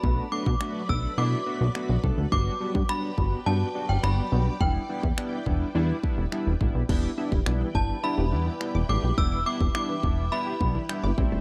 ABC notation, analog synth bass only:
X:1
M:4/4
L:1/16
Q:1/4=105
K:Em
V:1 name="Analog synth bass" clef=bass
B,,,2 z B,, z2 B,,,2 B,,2 z B,,, z B,,, C,, D,, | G,,,2 z G,, z2 G,,,2 G,,2 z G,,, G,,,2 B,,,2 | E,,,2 z E,, z2 E,,,2 E,,2 z E,,, z E,,, A,,, B,,, | E,,,2 z E,,, B,,,2 G,,,2 z E,,, E,,2 z E,,, A,,, B,,, |
E,,,3 E,,, z2 E,,,3 z B,,,2 z G,,, A,,, E,,, |]